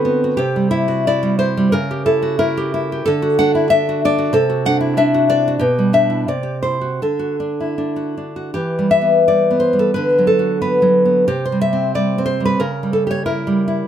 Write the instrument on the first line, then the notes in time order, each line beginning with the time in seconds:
nylon-string guitar
Already playing: D3 C4 F#4 B4
0.05 B3
0.24 F#4
0.37 C3 G4
0.56 G3
0.71 E4 E5
0.88 F#4
1.07 E4 D5
1.23 G3
1.39 E4 C5
1.57 G3
1.72 C#3 A#4
1.91 G4
2.06 E4 A4
2.22 F#4
2.39 E4 A#4
2.57 G4
2.74 E4
2.92 G4
3.06 D3 A4
3.22 F#4
3.39 D4 F#5
3.55 E4
3.70 D4 E5
3.89 F#4
4.05 D4 D5
4.18 F#4
4.33 C3 A4
4.50 F#4
4.66 D4 F#5
4.81 E4
4.97 D4 E5
5.14 F#4
5.30 D4 D5
5.48 F#4
5.59 B2 G4
5.79 G3
5.93 D4 E5
6.10 E4
6.28 C3 D5
6.43 G4
6.63 E4 C5
6.81 F#4
7.02 D3 A4
7.19 F#4
7.40 D4
7.60 E4
7.78 D4
7.96 F#4
8.17 D4
8.36 F#4
8.54 E3 G4
8.79 G3
8.91 E5
9.01 B3
9.28 G3 D5
9.51 B3
9.60 C5
9.73 G3
9.79 A4
9.94 D3 B4
10.18 F#3
10.27 A4
10.39 F#4
10.62 B3 B4
10.82 F#3
11.05 B3
11.28 C3 G4
11.45 C5
11.52 G3
11.61 E5
11.73 C4
11.95 G3 D5
12.18 C4
12.26 C5
12.40 G3
12.45 B4
12.60 C#3 A#4
12.83 G3
12.93 A4
13.07 G4 C#5
13.26 E4 A#4
13.47 G3
13.68 E4